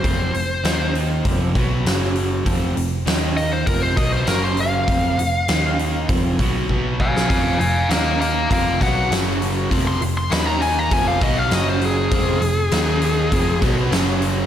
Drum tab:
HH |o-o-o-o-o-o-o-o-|o-o-o-o-o-o-o-o-|o-o-o-o-o-o-----|o-o-o-o-o-o-o-o-|
SD |----o-------o---|----o-------o---|----o----------o|----o-------o---|
BD |o-------o-o-----|o-------o-o-----|o-------o-o-o-o-|o-------o-o-----|

HH |o-o-o-o-o-o-o-o-|o-o-o-o-o-o-o-o-|
SD |----o-------o---|----o-------o---|
BD |o-------o-o-----|o-------o-o-----|